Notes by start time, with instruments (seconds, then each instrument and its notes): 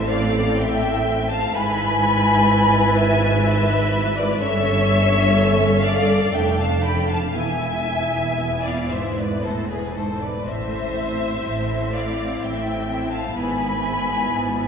Already playing: double bass section A1, cello section A2, viola section C4 A4
0.10 violin section D5 F5
0.58 violin section E5 G5
1.31 violin section F5 A5
1.55 double bass section G#1, cello section G#2, viola section E4 B4, violin section G#5 B5
3.00 violin section E5 G#5
3.46 violin section B4 E5
4.16 violin section B4 D5
4.39 double bass section G1, cello section G2, viola section C#4 A4, violin section C#5 E5
5.81 violin section D5 F5
6.32 double bass section F1, cello section F2, viola section D4, violin section E5 G5
6.59 violin section F5 A5
6.84 violin section G5 B5
7.10 violin section F5 A5
7.34 double bass section E1, cello section E2, viola section B3 E4, violin section E5 G#5
8.38 cello section E2
8.63 violin section D5 F5
8.90 cello section G#2, violin section C5 E5
9.16 violin section B4 D5
9.42 cello section A2, violin section A4 C5
9.68 violin section G#4 B4
9.94 cello section G#2, violin section A4 C5
10.22 violin section B4 D5
10.44 double bass section A1, cello section A2, violin section C5 E5
10.94 viola section C4 E4
11.44 double bass section A1, cello section A2
11.92 viola section C4 E4, violin section D5 F5
12.40 double bass section A1, cello section A2, violin section E5 G5
12.87 viola section C4 E4
13.11 violin section F5 A5
13.35 double bass section G#1, cello section G#2, viola section B3 E4, violin section G#5 B5
13.82 viola section B3 E4
14.30 double bass section G#1, cello section G#2